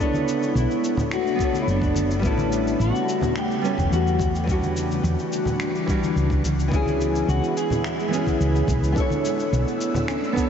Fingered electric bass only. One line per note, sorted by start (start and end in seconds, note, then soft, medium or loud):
0.55 0.66 B1 medium
1.67 2.23 F#1 medium
2.23 2.74 A1 medium
2.79 2.90 A1 medium
3.78 3.88 E1 medium
3.92 4.98 E2 medium
5.04 5.14 E2 medium
6.16 7.22 C#2 medium
7.28 7.39 C#2 medium
8.40 8.61 C#2 medium
8.68 8.83 B1 medium
8.83 8.93 C#2 medium
9.52 9.63 B1 medium